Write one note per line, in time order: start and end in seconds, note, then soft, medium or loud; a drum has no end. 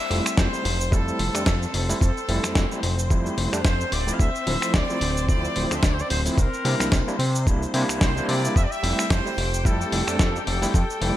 0.00 8.57 C4 medium
0.00 8.57 C5 medium
0.00 0.34 E5 loud
0.10 0.21 F1 loud
0.10 0.49 G3 medium
0.10 0.49 A3 medium
0.10 0.49 C4 medium
0.10 0.50 E4 medium
0.10 open hi-hat loud
0.26 finger snap medium
0.26 shaker medium
0.37 0.48 F2 medium
0.37 0.92 C5 loud
0.37 kick loud
0.37 snare loud
0.37 shaker medium
0.52 0.60 G3 medium
0.52 0.61 A3 medium
0.52 0.61 C4 medium
0.52 0.61 E4 medium
0.52 shaker soft
0.65 0.94 F1 medium
0.65 open hi-hat loud
0.81 shaker medium
0.91 1.12 F2 medium
0.91 1.31 G3 medium
0.91 1.31 A3 medium
0.91 1.31 C4 medium
0.91 1.31 E4 medium
0.91 1.73 A4 medium
0.91 kick loud
0.91 shaker medium
1.08 shaker soft
1.19 1.30 F1 medium
1.19 open hi-hat loud
1.34 1.44 F2 soft
1.34 1.42 G3 medium
1.34 1.42 A3 medium
1.34 1.43 C4 medium
1.34 1.43 D4 medium
1.34 finger snap medium
1.34 shaker medium
1.46 1.66 F2 medium
1.46 kick loud
1.46 snare loud
1.46 shaker medium
1.63 shaker soft
1.74 1.93 F1 medium
1.74 2.00 A4 medium
1.74 open hi-hat loud
1.89 2.02 G3 medium
1.89 2.02 A3 medium
1.89 2.02 C4 medium
1.89 2.02 E4 medium
1.89 open hi-hat medium
1.89 shaker medium
2.01 2.12 F2 loud
2.01 2.79 A4 medium
2.01 kick loud
2.01 shaker medium
2.17 shaker soft
2.28 2.39 F1 loud
2.28 2.67 G3 medium
2.28 2.68 A3 medium
2.28 2.68 C4 medium
2.28 2.68 E4 medium
2.28 open hi-hat loud
2.43 finger snap medium
2.43 snare soft
2.43 shaker medium
2.55 2.66 F2 medium
2.55 kick loud
2.55 snare loud
2.55 shaker medium
2.71 2.79 G3 medium
2.71 2.79 A3 medium
2.71 2.79 C4 medium
2.71 2.79 E4 medium
2.71 shaker soft
2.83 3.12 F1 medium
2.83 open hi-hat loud
2.99 shaker medium
3.10 3.30 F2 medium
3.10 3.49 G3 medium
3.10 3.49 A3 medium
3.10 3.49 C4 medium
3.10 3.50 E4 medium
3.10 kick loud
3.10 shaker medium
3.26 shaker soft
3.38 3.48 F1 medium
3.38 open hi-hat loud
3.53 3.63 F2 soft
3.53 3.61 G3 medium
3.53 3.61 A3 medium
3.53 3.61 C4 medium
3.53 3.61 D4 medium
3.53 finger snap medium
3.53 shaker medium
3.65 3.84 F2 medium
3.65 3.90 C5 loud
3.65 kick loud
3.65 snare loud
3.65 shaker medium
3.81 shaker soft
3.92 4.12 D1 medium
3.92 4.13 D5 loud
3.92 open hi-hat loud
4.07 4.20 F3 medium
4.07 4.20 A3 medium
4.07 4.20 C4 medium
4.07 4.20 E4 loud
4.07 shaker medium
4.13 4.20 F5 medium
4.19 4.30 D2 loud
4.19 4.74 E5 loud
4.19 kick loud
4.19 shaker medium
4.35 shaker soft
4.47 4.57 D1 loud
4.47 4.86 F3 medium
4.47 4.86 A3 medium
4.47 4.86 C4 medium
4.47 4.86 E4 medium
4.47 open hi-hat loud
4.62 finger snap medium
4.62 shaker medium
4.74 4.84 D2 medium
4.74 5.25 D5 loud
4.74 kick loud
4.74 snare loud
4.74 shaker medium
4.89 4.97 F3 medium
4.89 4.97 A3 medium
4.89 4.97 C4 medium
4.89 4.98 E4 medium
4.89 shaker soft
5.01 5.30 D1 medium
5.01 open hi-hat loud
5.17 shaker medium
5.28 5.48 D2 medium
5.28 5.67 F3 medium
5.28 5.67 A3 medium
5.28 5.68 C4 medium
5.28 5.68 E4 medium
5.28 5.72 D5 loud
5.28 kick loud
5.28 shaker medium
5.45 shaker soft
5.56 5.66 D1 medium
5.56 open hi-hat loud
5.71 5.81 D2 soft
5.71 5.79 F3 medium
5.71 5.79 A3 medium
5.71 5.79 C4 medium
5.71 5.79 D4 medium
5.71 finger snap medium
5.71 shaker medium
5.75 5.83 E5 medium
5.83 6.03 D2 medium
5.83 5.93 D5 medium
5.83 kick loud
5.83 snare loud
5.83 shaker medium
5.93 6.01 C5 medium
5.99 6.10 D5 medium
5.99 shaker soft
6.10 6.30 D1 medium
6.10 6.22 C5 medium
6.10 open hi-hat loud
6.25 6.36 F3 medium
6.25 6.36 A3 medium
6.25 6.36 C4 medium
6.25 6.37 E4 medium
6.25 open hi-hat medium
6.25 shaker medium
6.38 6.48 C2 loud
6.38 7.15 A#4 medium
6.38 kick loud
6.38 shaker medium
6.54 shaker soft
6.65 6.75 C3 loud
6.65 7.04 G3 medium
6.65 7.04 A#3 medium
6.65 7.04 D4 medium
6.65 7.04 E4 medium
6.65 open hi-hat loud
6.80 6.90 C2 soft
6.80 finger snap medium
6.80 snare soft
6.80 shaker medium
6.92 7.03 C2 medium
6.92 kick loud
6.92 snare loud
6.92 shaker soft
7.07 7.15 G3 medium
7.07 7.15 A#3 medium
7.07 7.15 D4 medium
7.07 7.16 E4 medium
7.07 shaker soft
7.19 7.48 C3 medium
7.19 open hi-hat loud
7.35 shaker medium
7.46 7.66 C2 medium
7.46 7.71 G3 medium
7.46 7.72 A#3 medium
7.46 7.72 D4 medium
7.46 7.72 E4 medium
7.46 kick loud
7.46 shaker medium
7.63 shaker soft
7.74 7.84 C3 medium
7.74 8.13 G3 medium
7.74 8.13 A#3 medium
7.74 8.13 D4 medium
7.74 8.13 E4 medium
7.74 open hi-hat loud
7.89 7.99 C2 soft
7.89 finger snap medium
7.89 shaker medium
8.01 8.21 C2 medium
8.01 8.27 C5 medium
8.01 kick loud
8.01 snare loud
8.01 shaker soft
8.16 8.54 G3 medium
8.16 8.54 A#3 medium
8.16 8.55 D4 medium
8.16 8.55 E4 loud
8.16 shaker soft
8.28 8.48 C3 medium
8.28 8.54 D5 medium
8.28 open hi-hat loud
8.45 shaker medium
8.56 8.66 F2 loud
8.56 11.17 G4 medium
8.56 8.64 E5 loud
8.56 11.17 G5 medium
8.56 kick loud
8.56 shaker medium
8.63 8.71 D5 medium
8.71 9.10 E5 loud
8.71 shaker soft
8.83 8.93 F1 loud
8.83 9.22 G3 medium
8.83 9.22 A3 medium
8.83 9.22 C4 medium
8.83 9.23 E4 medium
8.83 open hi-hat loud
8.99 finger snap medium
8.99 shaker medium
9.10 9.21 F2 medium
9.10 9.65 C5 loud
9.10 kick loud
9.10 snare loud
9.10 shaker medium
9.26 9.33 G3 medium
9.26 9.34 A3 medium
9.26 9.34 C4 medium
9.26 9.34 E4 medium
9.26 shaker soft
9.37 9.67 F1 medium
9.37 open hi-hat loud
9.54 shaker medium
9.65 9.84 F2 medium
9.65 10.04 G3 medium
9.65 10.04 A3 medium
9.65 10.04 C4 medium
9.65 10.04 E4 medium
9.65 10.45 A4 medium
9.65 kick loud
9.65 shaker soft
9.81 shaker soft
9.92 10.03 F1 medium
9.92 open hi-hat loud
10.07 10.17 F2 soft
10.07 10.15 G3 medium
10.07 10.15 A3 medium
10.07 10.16 C4 medium
10.07 10.16 D4 medium
10.07 finger snap medium
10.07 shaker medium
10.19 10.39 F2 medium
10.19 kick loud
10.19 snare loud
10.19 shaker medium
10.36 shaker soft
10.47 10.66 F1 medium
10.47 10.72 A4 medium
10.47 open hi-hat loud
10.61 10.74 G3 medium
10.61 10.74 A3 medium
10.61 10.75 C4 medium
10.61 10.75 E4 medium
10.61 open hi-hat medium
10.61 shaker medium
10.74 10.84 F2 loud
10.74 11.17 A4 medium
10.74 kick loud
10.74 shaker medium
10.90 shaker soft
11.01 11.12 F1 loud
11.01 11.17 G3 medium
11.01 11.17 A3 medium
11.01 11.17 C4 medium
11.01 11.17 E4 medium
11.01 open hi-hat loud